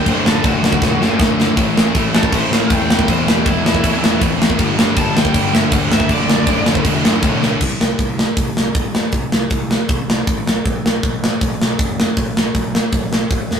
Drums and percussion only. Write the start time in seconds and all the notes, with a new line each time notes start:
0.06 kick, crash
0.26 snare
0.44 kick, crash
0.64 snare
0.72 kick
0.82 kick, snare
1.02 snare
1.20 kick, snare
1.40 snare
1.57 kick, crash
1.78 snare
1.95 kick, crash
2.15 snare
2.23 kick
2.32 kick, crash
2.53 snare
2.70 kick, crash
2.90 snare
2.99 kick
3.08 kick, crash
3.28 snare
3.46 kick, crash
3.66 snare
3.74 kick
3.84 kick, crash
4.04 snare
4.21 kick, crash
4.42 snare
4.50 kick
4.59 kick, crash
4.79 snare
4.97 kick, crash
5.17 snare
5.25 kick
5.34 kick, crash
5.55 snare
5.72 kick, crash
5.92 snare
6.00 kick
6.09 kick, crash
6.29 snare
6.47 kick, crash
6.66 snare
6.75 kick
6.85 kick, crash
7.05 snare
7.23 kick, crash
7.43 snare
7.61 kick, crash
7.81 snare
7.99 kick, open hi-hat
8.19 snare
8.37 kick, open hi-hat
8.57 snare
8.75 kick, open hi-hat
8.95 snare
9.12 kick, open hi-hat
9.32 snare
9.50 kick, open hi-hat
9.71 snare
9.89 kick, open hi-hat
10.10 snare
10.27 kick, open hi-hat
10.47 snare
10.66 kick, open hi-hat
10.86 snare
11.03 kick, open hi-hat
11.24 snare
11.41 kick, open hi-hat
11.62 snare
11.79 kick, open hi-hat
12.00 snare
12.17 kick, open hi-hat
12.37 snare
12.55 kick, open hi-hat
12.75 snare
12.92 kick, open hi-hat
13.13 snare
13.31 kick, open hi-hat
13.51 snare